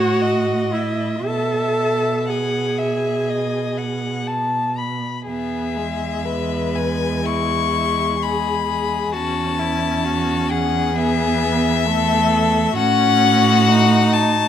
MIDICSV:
0, 0, Header, 1, 5, 480
1, 0, Start_track
1, 0, Key_signature, 4, "major"
1, 0, Tempo, 1023891
1, 596, Time_signature, 4, 2, 24, 8
1, 1074, Tempo, 995025
1, 3474, Tempo, 931677
1, 4914, Tempo, 906344
1, 7255, End_track
2, 0, Start_track
2, 0, Title_t, "Violin"
2, 0, Program_c, 0, 40
2, 0, Note_on_c, 0, 78, 75
2, 349, Note_on_c, 0, 76, 57
2, 356, Note_off_c, 0, 78, 0
2, 598, Note_off_c, 0, 76, 0
2, 600, Note_on_c, 0, 81, 62
2, 1080, Note_on_c, 0, 80, 46
2, 1087, Note_off_c, 0, 81, 0
2, 2037, Note_off_c, 0, 80, 0
2, 2523, Note_on_c, 0, 76, 70
2, 3226, Note_on_c, 0, 80, 72
2, 3233, Note_off_c, 0, 76, 0
2, 3470, Note_on_c, 0, 85, 81
2, 3478, Note_off_c, 0, 80, 0
2, 3968, Note_on_c, 0, 83, 66
2, 3976, Note_off_c, 0, 85, 0
2, 4437, Note_off_c, 0, 83, 0
2, 4440, Note_on_c, 0, 81, 77
2, 5147, Note_on_c, 0, 78, 78
2, 5155, Note_off_c, 0, 81, 0
2, 5389, Note_on_c, 0, 76, 98
2, 5397, Note_off_c, 0, 78, 0
2, 6345, Note_off_c, 0, 76, 0
2, 6348, Note_on_c, 0, 78, 110
2, 7068, Note_on_c, 0, 81, 101
2, 7076, Note_off_c, 0, 78, 0
2, 7255, Note_off_c, 0, 81, 0
2, 7255, End_track
3, 0, Start_track
3, 0, Title_t, "Violin"
3, 0, Program_c, 1, 40
3, 0, Note_on_c, 1, 73, 62
3, 104, Note_on_c, 1, 75, 50
3, 111, Note_off_c, 1, 73, 0
3, 595, Note_off_c, 1, 75, 0
3, 597, Note_on_c, 1, 76, 49
3, 1065, Note_off_c, 1, 76, 0
3, 1070, Note_on_c, 1, 78, 54
3, 1314, Note_on_c, 1, 76, 43
3, 1321, Note_off_c, 1, 78, 0
3, 1559, Note_on_c, 1, 75, 44
3, 1566, Note_off_c, 1, 76, 0
3, 1791, Note_on_c, 1, 78, 51
3, 1798, Note_off_c, 1, 75, 0
3, 2031, Note_on_c, 1, 81, 57
3, 2038, Note_off_c, 1, 78, 0
3, 2276, Note_on_c, 1, 83, 45
3, 2284, Note_off_c, 1, 81, 0
3, 2513, Note_off_c, 1, 83, 0
3, 2515, Note_on_c, 1, 68, 48
3, 2986, Note_on_c, 1, 71, 50
3, 2993, Note_off_c, 1, 68, 0
3, 3466, Note_off_c, 1, 71, 0
3, 3469, Note_on_c, 1, 64, 47
3, 3951, Note_off_c, 1, 64, 0
3, 3954, Note_on_c, 1, 68, 53
3, 4192, Note_off_c, 1, 68, 0
3, 4195, Note_on_c, 1, 68, 55
3, 4432, Note_on_c, 1, 66, 58
3, 4440, Note_off_c, 1, 68, 0
3, 4671, Note_on_c, 1, 64, 55
3, 4679, Note_off_c, 1, 66, 0
3, 4909, Note_on_c, 1, 66, 69
3, 4916, Note_off_c, 1, 64, 0
3, 5149, Note_on_c, 1, 68, 64
3, 5157, Note_off_c, 1, 66, 0
3, 5871, Note_on_c, 1, 69, 77
3, 5879, Note_off_c, 1, 68, 0
3, 6337, Note_off_c, 1, 69, 0
3, 6340, Note_on_c, 1, 66, 78
3, 7255, Note_off_c, 1, 66, 0
3, 7255, End_track
4, 0, Start_track
4, 0, Title_t, "Viola"
4, 0, Program_c, 2, 41
4, 0, Note_on_c, 2, 66, 84
4, 341, Note_on_c, 2, 64, 60
4, 348, Note_off_c, 2, 66, 0
4, 595, Note_on_c, 2, 69, 71
4, 602, Note_off_c, 2, 64, 0
4, 1072, Note_on_c, 2, 68, 57
4, 1080, Note_off_c, 2, 69, 0
4, 2033, Note_off_c, 2, 68, 0
4, 2517, Note_on_c, 2, 59, 49
4, 2755, Note_on_c, 2, 56, 56
4, 2762, Note_off_c, 2, 59, 0
4, 4439, Note_on_c, 2, 61, 59
4, 4446, Note_off_c, 2, 56, 0
4, 5386, Note_off_c, 2, 61, 0
4, 5389, Note_on_c, 2, 59, 67
4, 5869, Note_on_c, 2, 57, 71
4, 5877, Note_off_c, 2, 59, 0
4, 6345, Note_off_c, 2, 57, 0
4, 6349, Note_on_c, 2, 61, 81
4, 6831, Note_on_c, 2, 63, 77
4, 6839, Note_off_c, 2, 61, 0
4, 7255, Note_off_c, 2, 63, 0
4, 7255, End_track
5, 0, Start_track
5, 0, Title_t, "Cello"
5, 0, Program_c, 3, 42
5, 0, Note_on_c, 3, 45, 62
5, 576, Note_off_c, 3, 45, 0
5, 595, Note_on_c, 3, 47, 50
5, 2397, Note_off_c, 3, 47, 0
5, 2519, Note_on_c, 3, 40, 54
5, 4421, Note_off_c, 3, 40, 0
5, 4440, Note_on_c, 3, 40, 67
5, 6330, Note_off_c, 3, 40, 0
5, 6348, Note_on_c, 3, 45, 81
5, 7255, Note_off_c, 3, 45, 0
5, 7255, End_track
0, 0, End_of_file